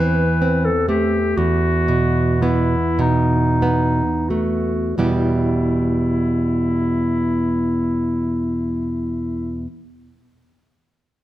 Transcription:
Already playing: nylon-string guitar E2 E3 C4, clarinet B4
0.42 nylon-string guitar C4
0.65 clarinet A4
0.88 nylon-string guitar A3, clarinet G4
1.37 nylon-string guitar E2, clarinet F#4
1.88 nylon-string guitar B2
2.42 nylon-string guitar B3, clarinet E4
2.99 nylon-string guitar B2, clarinet D#4
3.62 nylon-string guitar B3
4.29 nylon-string guitar A3, clarinet F#4
4.97 nylon-string guitar E2 B2 G3 B3 E4 G4, clarinet E4

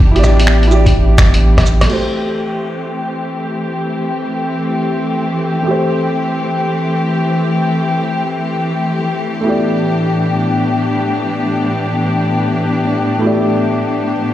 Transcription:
Already playing: sub bass A1, string section E3 B3 D4 G4
0.00 kick
0.11 felt piano E4 G4
0.16 felt piano D5, closed hi-hat
0.24 cross-stick, cabasa
0.40 closed hi-hat
0.47 finger snap
0.63 closed hi-hat
0.67 felt piano E4
0.71 felt piano G4 D5, cabasa
0.86 kick, closed hi-hat
1.18 finger snap, kick, cross-stick, cabasa
1.34 closed hi-hat
1.57 kick, cross-stick, closed hi-hat
1.66 cabasa
1.81 felt piano A3, cross-stick, closed hi-hat
1.89 string section E3 A3 C4 G4, felt piano G4, crash
1.93 felt piano C5
5.63 felt piano A3
5.67 felt piano G4
5.71 felt piano C5
9.41 string section A2 B3 D4, felt piano A3 E4
9.46 felt piano G4 D5
13.19 felt piano A3 E4
13.24 felt piano G4 D5

